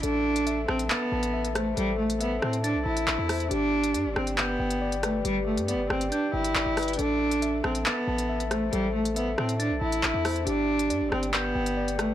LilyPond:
<<
  \new Staff \with { instrumentName = "Tine electric piano" } { \time 4/4 \key a \minor \tempo 4 = 138 a'4 e''8 a''8 a'''8 a''8 e''8 c''8 | a'4 e''8 a''8 a'''8 a''8 e''8 c''8 | g'4 d''8 g''8 g'''8 g''8 d''8 b'8 | g'4 d''8 g''8 g'''8 g''8 d''8 b'8 |
a'4 e''8 a''8 a'''8 a''8 e''8 c''8 | a'4 e''8 a''8 a'''8 a''8 e''8 c''8 | g'4 d''8 g''8 g'''8 g''8 d''8 b'8 | }
  \new Staff \with { instrumentName = "Cello" } { \time 4/4 \key a \minor d'4. c'8 b4. a8 | g8 a8 b8 c'8 d'8 e'4. | d'4. c'8 b4. a8 | g8 a8 b8 c'8 d'8 e'4. |
d'4. c'8 b4. a8 | g8 a8 b8 c'8 d'8 e'4. | d'4. c'8 b4. a8 | }
  \new Staff \with { instrumentName = "808-style bass" } { \clef bass \time 4/4 \key a \minor a,,4. a,,8 r8 a,,4. | a,,4. a,8. b,,16 a,,8 a,,16 e,8. | g,,4 g,16 g,,16 g,,4 g,,4. | g,,8. g,16. g,,16. g,,8 r8 g,,8 g,,16 g,,8. |
a,,4. a,,8 r8 a,,4. | a,,4. a,8. b,,16 a,,8 a,,16 e,8. | g,,4 g,16 g,,16 g,,4 g,,4. | }
  \new DrumStaff \with { instrumentName = "Drums" } \drummode { \time 4/4 hh8. hh16 hh8 ss16 hh16 hc8. hh16 r16 hh16 <hh ss>8 | hh8. hh16 hh8 ss16 hh16 hh8. hh16 hc8 <hh hho ss>16 hh16 | hh8. hh16 hh8 ss16 hh16 hc8. hh16 r16 hh16 <hh ss>8 | hh8. hh16 hh8 ss16 hh16 hh8. hh16 hc8 <hh hho ss>32 hh32 hh32 hh32 |
hh8. hh16 hh8 ss16 hh16 hc8. hh16 r16 hh16 <hh ss>8 | hh8. hh16 hh8 ss16 hh16 hh8. hh16 hc8 <hh hho ss>16 hh16 | hh8. hh16 hh8 ss16 hh16 hc8. hh16 r16 hh16 <hh ss>8 | }
>>